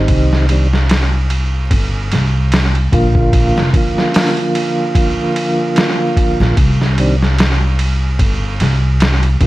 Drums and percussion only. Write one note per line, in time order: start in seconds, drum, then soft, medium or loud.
0.08 kick loud
0.08 ride medium
0.33 snare soft
0.49 ride medium
0.73 snare soft
0.89 snare loud
0.89 ride medium
1.30 ride medium
1.71 kick loud
1.71 ride medium
2.12 snare soft
2.12 ride medium
2.52 snare loud
2.52 ride medium
2.75 ride soft
2.92 kick medium
2.92 ride medium
3.15 kick medium
3.33 kick loud
3.33 ride medium
3.58 snare soft
3.73 kick medium
3.73 ride medium
3.98 snare soft
4.14 snare loud
4.14 open hi-hat medium
4.37 ride soft
4.55 ride medium
4.95 kick loud
4.95 ride medium
5.36 ride medium
5.76 snare loud
5.76 ride medium
6.17 kick medium
6.17 ride medium
6.41 snare soft
6.57 kick loud
6.57 ride medium
6.82 snare soft
6.98 ride medium
7.22 snare soft
7.38 snare loud
7.38 ride medium
7.79 ride medium
8.19 kick loud
8.19 ride medium
8.60 snare soft
8.60 ride medium
9.00 snare loud
9.00 ride medium
9.23 ride soft
9.41 kick medium
9.41 ride medium